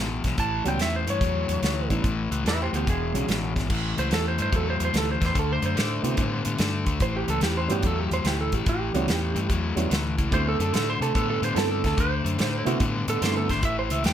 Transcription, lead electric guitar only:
0.40 0.66 A5 medium
0.68 0.80 G5 medium
0.82 0.94 E5 medium
0.96 1.08 C5 medium
1.10 1.89 C#5 medium
2.48 2.60 B4 medium
2.48 2.60 E5 medium
2.62 2.73 G4 medium
2.62 2.74 C5 medium
2.75 2.87 B3 medium
2.75 2.88 G4 medium
2.90 3.28 G#4 medium
3.99 4.11 C5 medium
4.14 4.26 A4 medium
4.28 4.40 C5 medium
4.42 4.56 C5 medium
4.56 4.67 A4 medium
4.70 4.81 C5 medium
4.85 4.96 C5 medium
4.98 5.09 A4 medium
5.12 5.23 C5 medium
5.26 5.37 C5 medium
5.39 5.52 A4 medium
5.52 5.64 C5 medium
5.66 6.44 C5 medium
7.02 7.15 C5 medium
7.17 7.30 G4 medium
7.30 7.42 A4 medium
7.43 7.56 G4 medium
7.57 7.70 C5 medium
7.72 7.87 G4 medium
7.87 8.00 A4 medium
8.00 8.12 G4 medium
8.13 8.26 C5 medium
8.27 8.39 G4 medium
8.41 8.54 A4 medium
8.54 8.67 G4 medium
8.69 9.48 G4 loud
10.34 10.46 C5 medium
10.48 10.61 A4 medium
10.62 10.74 A4 medium
10.76 10.90 A4 medium
10.90 11.02 C5 medium
11.02 11.15 A4 medium
11.16 11.29 A4 medium
11.30 11.43 A4 medium
11.44 11.57 C5 medium
11.58 11.71 A4 loud
11.72 11.84 A4 medium
11.86 11.99 A4 medium
12.00 12.79 C5 loud
13.10 13.23 A4 loud
13.23 13.36 C5 medium
13.37 13.51 A4 medium
13.51 13.63 C5 medium
13.65 13.78 E5 loud
13.79 13.91 C5 loud
13.91 14.05 E5 medium
14.06 14.13 G5 medium

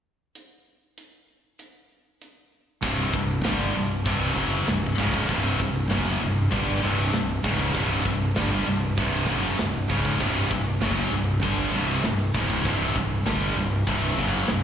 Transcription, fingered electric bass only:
2.83 3.11 C1 loud
3.13 3.42 C1 medium
3.45 3.73 G1 medium
3.75 4.04 C1 medium
4.06 4.34 C1 medium
4.36 4.65 F#1 loud
4.67 4.96 C1 medium
4.98 5.27 C#1 medium
5.29 5.58 C1 medium
5.60 5.88 C1 medium
5.91 6.19 F#1 loud
6.22 6.50 C1 medium
6.52 6.81 G1 medium
6.84 7.12 C1 loud
7.15 7.43 C1 medium
7.44 7.73 C#1 medium
7.75 8.04 C1 loud
8.05 8.34 C1 medium
8.37 8.65 G1 loud
8.67 8.96 C1 medium
8.98 9.27 C1 medium
9.29 9.57 F#1 loud
9.60 9.88 C1 medium
9.90 10.18 C#1 loud
10.20 10.49 C1 loud
10.51 10.79 C1 medium
10.81 11.10 F#1 loud
11.12 11.40 C1 medium
11.43 11.71 G1 medium
11.74 12.02 C1 medium
12.04 12.32 C1 medium
12.35 12.63 C#1 medium
12.65 12.93 C1 loud
12.95 13.24 C1 medium
13.26 13.55 G1 loud
13.56 13.85 C1 medium
13.87 14.16 C1 loud
14.17 14.46 F#1 medium
14.48 14.63 C1 medium

